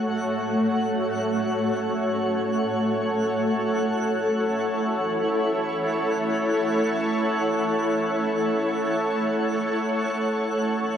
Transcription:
0, 0, Header, 1, 4, 480
1, 0, Start_track
1, 0, Key_signature, 3, "major"
1, 0, Tempo, 500000
1, 10533, End_track
2, 0, Start_track
2, 0, Title_t, "Synth texture"
2, 0, Program_c, 0, 99
2, 0, Note_on_c, 0, 78, 76
2, 10533, Note_off_c, 0, 78, 0
2, 10533, End_track
3, 0, Start_track
3, 0, Title_t, "Ambient pad"
3, 0, Program_c, 1, 92
3, 0, Note_on_c, 1, 57, 69
3, 0, Note_on_c, 1, 66, 71
3, 0, Note_on_c, 1, 69, 74
3, 0, Note_on_c, 1, 73, 79
3, 2947, Note_on_c, 1, 64, 75
3, 2948, Note_off_c, 1, 57, 0
3, 5308, Note_off_c, 1, 66, 0
3, 8809, Note_on_c, 1, 57, 77
3, 9324, Note_on_c, 1, 66, 82
3, 10533, Note_off_c, 1, 57, 0
3, 10533, Note_off_c, 1, 64, 0
3, 10533, Note_off_c, 1, 66, 0
3, 10533, Note_off_c, 1, 69, 0
3, 10533, Note_off_c, 1, 73, 0
3, 10533, End_track
4, 0, Start_track
4, 0, Title_t, "Synth drone"
4, 0, Program_c, 2, 95
4, 0, Note_on_c, 2, 57, 68
4, 10533, Note_off_c, 2, 57, 0
4, 10533, End_track
0, 0, End_of_file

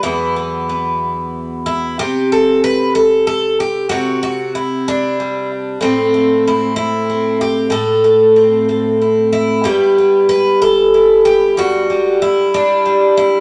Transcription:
0, 0, Header, 1, 2, 480
1, 0, Start_track
1, 0, Tempo, 647249
1, 27, Time_signature, 6, 3, 24, 8
1, 1947, Tempo, 633580
1, 6267, Tempo, 641711
1, 10063, End_track
2, 0, Start_track
2, 0, Title_t, "Twelve-string acoustic guitar"
2, 0, Program_c, 0, 25
2, 22, Note_on_c, 0, 64, 84
2, 26, Note_on_c, 0, 40, 75
2, 31, Note_on_c, 0, 54, 51
2, 39, Note_on_c, 0, 59, 50
2, 260, Note_off_c, 0, 59, 0
2, 269, Note_on_c, 0, 59, 45
2, 506, Note_off_c, 0, 59, 0
2, 514, Note_on_c, 0, 59, 45
2, 1222, Note_off_c, 0, 64, 0
2, 1231, Note_on_c, 0, 64, 84
2, 1441, Note_off_c, 0, 54, 0
2, 1444, Note_off_c, 0, 59, 0
2, 1467, Note_off_c, 0, 40, 0
2, 1470, Note_off_c, 0, 64, 0
2, 1477, Note_on_c, 0, 67, 105
2, 1482, Note_on_c, 0, 48, 71
2, 1712, Note_off_c, 0, 67, 0
2, 1721, Note_on_c, 0, 69, 89
2, 1953, Note_off_c, 0, 69, 0
2, 1957, Note_on_c, 0, 71, 91
2, 2190, Note_off_c, 0, 71, 0
2, 2193, Note_on_c, 0, 69, 93
2, 2427, Note_off_c, 0, 69, 0
2, 2436, Note_on_c, 0, 69, 96
2, 2674, Note_off_c, 0, 69, 0
2, 2686, Note_on_c, 0, 67, 88
2, 2891, Note_off_c, 0, 48, 0
2, 2905, Note_off_c, 0, 67, 0
2, 2908, Note_on_c, 0, 66, 98
2, 2923, Note_on_c, 0, 48, 72
2, 3151, Note_off_c, 0, 66, 0
2, 3161, Note_on_c, 0, 66, 87
2, 3398, Note_off_c, 0, 66, 0
2, 3405, Note_on_c, 0, 64, 83
2, 3655, Note_on_c, 0, 62, 90
2, 3896, Note_on_c, 0, 55, 46
2, 4119, Note_off_c, 0, 64, 0
2, 4328, Note_off_c, 0, 48, 0
2, 4357, Note_on_c, 0, 45, 75
2, 4362, Note_off_c, 0, 62, 0
2, 4363, Note_off_c, 0, 55, 0
2, 4369, Note_on_c, 0, 60, 96
2, 4609, Note_on_c, 0, 57, 47
2, 4864, Note_on_c, 0, 64, 84
2, 5072, Note_off_c, 0, 64, 0
2, 5081, Note_on_c, 0, 64, 90
2, 5317, Note_off_c, 0, 60, 0
2, 5334, Note_on_c, 0, 60, 47
2, 5553, Note_off_c, 0, 64, 0
2, 5572, Note_on_c, 0, 67, 87
2, 5766, Note_off_c, 0, 57, 0
2, 5770, Note_off_c, 0, 60, 0
2, 5782, Note_off_c, 0, 45, 0
2, 5791, Note_on_c, 0, 45, 75
2, 5798, Note_off_c, 0, 67, 0
2, 5806, Note_on_c, 0, 69, 89
2, 6050, Note_on_c, 0, 57, 44
2, 6292, Note_on_c, 0, 60, 48
2, 6523, Note_off_c, 0, 57, 0
2, 6536, Note_on_c, 0, 57, 48
2, 6765, Note_off_c, 0, 69, 0
2, 6781, Note_on_c, 0, 64, 42
2, 7010, Note_off_c, 0, 64, 0
2, 7013, Note_on_c, 0, 64, 81
2, 7226, Note_off_c, 0, 60, 0
2, 7227, Note_off_c, 0, 57, 0
2, 7246, Note_off_c, 0, 45, 0
2, 7247, Note_on_c, 0, 43, 68
2, 7250, Note_off_c, 0, 64, 0
2, 7256, Note_on_c, 0, 55, 53
2, 7257, Note_on_c, 0, 67, 89
2, 7260, Note_on_c, 0, 59, 50
2, 7263, Note_on_c, 0, 64, 48
2, 7501, Note_off_c, 0, 59, 0
2, 7504, Note_on_c, 0, 59, 43
2, 7731, Note_off_c, 0, 67, 0
2, 7734, Note_on_c, 0, 71, 90
2, 7970, Note_off_c, 0, 71, 0
2, 7979, Note_on_c, 0, 69, 97
2, 8213, Note_off_c, 0, 64, 0
2, 8222, Note_on_c, 0, 64, 47
2, 8450, Note_off_c, 0, 69, 0
2, 8454, Note_on_c, 0, 67, 94
2, 8663, Note_off_c, 0, 64, 0
2, 8688, Note_off_c, 0, 67, 0
2, 8691, Note_off_c, 0, 43, 0
2, 8694, Note_on_c, 0, 43, 73
2, 8703, Note_on_c, 0, 66, 102
2, 8726, Note_off_c, 0, 55, 0
2, 8934, Note_off_c, 0, 59, 0
2, 8937, Note_on_c, 0, 55, 46
2, 9171, Note_off_c, 0, 66, 0
2, 9178, Note_on_c, 0, 64, 85
2, 9420, Note_on_c, 0, 62, 95
2, 9643, Note_off_c, 0, 55, 0
2, 9654, Note_on_c, 0, 55, 49
2, 9881, Note_off_c, 0, 64, 0
2, 9892, Note_on_c, 0, 64, 90
2, 10063, Note_off_c, 0, 43, 0
2, 10063, Note_off_c, 0, 55, 0
2, 10063, Note_off_c, 0, 62, 0
2, 10063, Note_off_c, 0, 64, 0
2, 10063, End_track
0, 0, End_of_file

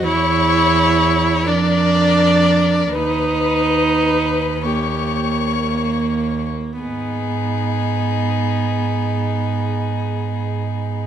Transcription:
0, 0, Header, 1, 5, 480
1, 0, Start_track
1, 0, Key_signature, 5, "minor"
1, 0, Tempo, 936037
1, 29, Time_signature, 6, 3, 24, 8
1, 990, Tempo, 1003344
1, 1470, Tempo, 1092896
1, 1950, Tempo, 1282051
1, 2430, Tempo, 1518987
1, 2910, Tempo, 1459854
1, 3390, Tempo, 1421801
1, 4328, End_track
2, 0, Start_track
2, 0, Title_t, "Violin"
2, 0, Program_c, 0, 40
2, 34, Note_on_c, 0, 73, 70
2, 724, Note_off_c, 0, 73, 0
2, 748, Note_on_c, 0, 70, 59
2, 1454, Note_off_c, 0, 70, 0
2, 1484, Note_on_c, 0, 71, 65
2, 2169, Note_off_c, 0, 71, 0
2, 2184, Note_on_c, 0, 73, 58
2, 2802, Note_off_c, 0, 73, 0
2, 2907, Note_on_c, 0, 68, 52
2, 4328, Note_off_c, 0, 68, 0
2, 4328, End_track
3, 0, Start_track
3, 0, Title_t, "Violin"
3, 0, Program_c, 1, 40
3, 42, Note_on_c, 1, 73, 79
3, 760, Note_on_c, 1, 74, 80
3, 768, Note_off_c, 1, 73, 0
3, 1476, Note_off_c, 1, 74, 0
3, 1478, Note_on_c, 1, 71, 76
3, 2185, Note_on_c, 1, 67, 52
3, 2190, Note_off_c, 1, 71, 0
3, 2549, Note_off_c, 1, 67, 0
3, 2917, Note_on_c, 1, 63, 52
3, 4328, Note_off_c, 1, 63, 0
3, 4328, End_track
4, 0, Start_track
4, 0, Title_t, "Viola"
4, 0, Program_c, 2, 41
4, 34, Note_on_c, 2, 64, 96
4, 750, Note_on_c, 2, 62, 93
4, 757, Note_off_c, 2, 64, 0
4, 1474, Note_on_c, 2, 63, 92
4, 1481, Note_off_c, 2, 62, 0
4, 2177, Note_on_c, 2, 58, 67
4, 2182, Note_off_c, 2, 63, 0
4, 2902, Note_off_c, 2, 58, 0
4, 2904, Note_on_c, 2, 59, 61
4, 4328, Note_off_c, 2, 59, 0
4, 4328, End_track
5, 0, Start_track
5, 0, Title_t, "Cello"
5, 0, Program_c, 3, 42
5, 32, Note_on_c, 3, 40, 71
5, 750, Note_on_c, 3, 41, 62
5, 758, Note_off_c, 3, 40, 0
5, 1474, Note_off_c, 3, 41, 0
5, 1478, Note_on_c, 3, 39, 54
5, 2802, Note_off_c, 3, 39, 0
5, 2911, Note_on_c, 3, 44, 51
5, 4328, Note_off_c, 3, 44, 0
5, 4328, End_track
0, 0, End_of_file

